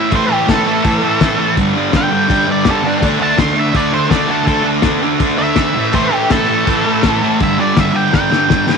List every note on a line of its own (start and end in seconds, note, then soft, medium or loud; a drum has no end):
0.00 0.10 A2 loud
0.00 0.11 E3 loud
0.00 0.13 A3 loud
0.00 0.10 E5 medium
0.11 0.27 A2 loud
0.11 0.28 E3 loud
0.11 0.29 A3 loud
0.11 kick loud
0.11 crash medium
0.15 0.32 C5 medium
0.28 0.46 A2 medium
0.28 0.47 E3 medium
0.28 0.48 A3 loud
0.32 0.50 G4 medium
0.47 0.63 A2 medium
0.47 0.65 E3 medium
0.47 0.66 A3 loud
0.47 1.54 A4 medium
0.47 kick loud
0.47 snare loud
0.47 crash medium
0.65 0.83 A2 loud
0.65 0.84 E3 loud
0.65 0.85 A3 loud
0.84 1.01 A2 medium
0.84 1.02 E3 loud
0.84 1.03 A3 loud
0.84 kick loud
0.84 crash medium
1.02 1.20 A2 medium
1.02 1.21 E3 loud
1.02 1.22 A3 loud
1.21 1.36 A2 medium
1.21 1.38 E3 loud
1.21 1.39 A3 loud
1.21 kick loud
1.21 snare loud
1.21 crash medium
1.38 1.55 A2 medium
1.38 1.55 E3 medium
1.38 1.56 A3 medium
1.56 1.74 G2 medium
1.56 1.75 D3 loud
1.56 1.76 G3 loud
1.56 kick loud
1.56 crash medium
1.75 1.91 G2 medium
1.75 1.93 D3 medium
1.75 1.93 G3 medium
1.92 2.09 G2 medium
1.92 2.10 D3 medium
1.92 2.11 G3 medium
1.92 kick loud
1.92 snare loud
1.92 crash medium
1.96 2.47 G5 medium
2.10 2.27 G2 loud
2.10 2.29 D3 loud
2.10 2.29 G3 loud
2.29 2.45 G2 medium
2.29 2.47 D3 medium
2.29 2.46 G3 medium
2.29 kick loud
2.29 crash medium
2.47 2.63 G2 medium
2.47 2.64 D3 medium
2.47 2.66 G3 medium
2.51 2.67 D5 medium
2.65 2.82 G2 medium
2.65 2.83 D3 loud
2.65 2.84 G3 loud
2.65 kick loud
2.65 snare loud
2.65 crash medium
2.71 2.86 A4 medium
2.83 3.00 G2 medium
2.83 2.99 D3 medium
2.83 3.01 G3 loud
2.83 3.02 D4 medium
3.00 3.19 D3 medium
3.00 3.19 A3 medium
3.00 3.21 D4 loud
3.00 kick loud
3.00 crash medium
3.19 3.36 D3 medium
3.19 3.37 A3 medium
3.19 3.39 D4 medium
3.19 3.39 A5 medium
3.37 3.54 D3 medium
3.37 3.56 A3 medium
3.37 3.56 D4 medium
3.37 3.57 C6 medium
3.37 kick loud
3.37 snare loud
3.37 crash medium
3.55 3.72 D3 loud
3.55 3.74 A3 loud
3.55 3.75 D4 loud
3.60 3.76 E5 medium
3.73 3.91 D3 medium
3.73 3.92 A3 medium
3.73 3.92 D4 medium
3.73 3.93 D5 medium
3.73 kick loud
3.73 crash medium
3.92 4.08 D3 medium
3.92 4.10 A3 medium
3.92 4.10 D4 loud
3.92 4.11 C5 medium
4.09 4.27 D3 medium
4.09 4.28 A3 loud
4.09 4.28 D4 loud
4.09 4.29 D5 medium
4.09 kick loud
4.09 snare loud
4.09 crash medium
4.28 4.43 D3 medium
4.28 4.45 A3 medium
4.28 4.45 D4 medium
4.28 4.47 A4 medium
4.44 4.62 D3 medium
4.44 4.63 A3 medium
4.44 4.63 D4 loud
4.44 kick loud
4.44 crash medium
4.48 4.65 A4 loud
4.63 4.82 D3 medium
4.63 4.84 A3 loud
4.63 4.84 D4 medium
4.82 5.01 D3 medium
4.82 5.03 A3 medium
4.82 5.03 D4 loud
4.82 kick loud
4.82 snare loud
4.82 crash medium
5.02 5.19 D3 loud
5.02 5.20 A3 loud
5.02 5.21 D4 loud
5.20 5.36 D3 medium
5.20 5.38 A3 medium
5.20 5.39 D4 medium
5.20 kick loud
5.20 crash medium
5.38 5.55 D3 medium
5.38 5.55 A3 loud
5.38 5.57 D4 loud
5.38 5.92 E5 loud
5.56 5.74 D3 loud
5.56 5.74 A3 loud
5.56 5.74 D4 loud
5.56 kick loud
5.56 snare loud
5.56 crash medium
5.74 5.91 A2 medium
5.74 5.93 E3 medium
5.74 5.94 A3 loud
5.93 6.09 A2 medium
5.93 6.10 E3 loud
5.93 6.10 A3 loud
5.93 6.13 C5 medium
5.93 kick loud
5.93 crash medium
6.10 6.27 A2 loud
6.10 6.28 E3 medium
6.10 6.29 A3 medium
6.10 6.31 G4 medium
6.28 6.46 A2 medium
6.28 6.47 E3 medium
6.28 6.48 A3 medium
6.28 7.37 A4 loud
6.28 kick loud
6.28 snare loud
6.28 crash medium
6.47 6.64 A2 loud
6.47 6.65 E3 loud
6.47 6.66 A3 loud
6.65 6.83 A2 medium
6.65 6.84 E3 medium
6.65 6.85 A3 loud
6.65 kick loud
6.65 crash medium
6.84 7.01 A2 medium
6.84 7.02 E3 medium
6.84 7.03 A3 medium
7.03 7.19 A2 medium
7.03 7.21 E3 loud
7.03 7.21 A3 loud
7.03 kick loud
7.03 snare loud
7.03 crash medium
7.20 7.38 A2 medium
7.20 7.39 E3 medium
7.20 7.39 A3 medium
7.40 7.57 G2 medium
7.40 7.58 D3 loud
7.40 7.59 G3 loud
7.40 7.59 E5 loud
7.40 kick loud
7.40 crash medium
7.58 7.74 G2 medium
7.58 7.75 D3 medium
7.58 7.77 G3 medium
7.58 7.79 D5 loud
7.75 7.92 G2 medium
7.75 7.93 D3 medium
7.75 7.94 G3 medium
7.75 7.96 E5 medium
7.75 kick loud
7.75 snare loud
7.75 crash medium
7.93 8.10 G2 loud
7.93 8.12 D3 loud
7.93 8.13 G3 loud
7.93 8.13 G5 medium
8.11 8.30 G2 medium
8.11 8.30 D3 medium
8.11 8.31 G3 loud
8.11 8.78 G5 medium
8.11 kick loud
8.11 snare medium
8.31 8.47 G2 medium
8.31 8.48 D3 medium
8.31 8.49 G3 medium
8.31 snare medium
8.48 8.67 G2 loud
8.48 8.69 D3 loud
8.48 8.69 G3 loud
8.48 kick loud
8.48 snare medium
8.68 8.78 G2 medium
8.68 8.78 D3 medium
8.68 8.78 G3 medium
8.68 snare loud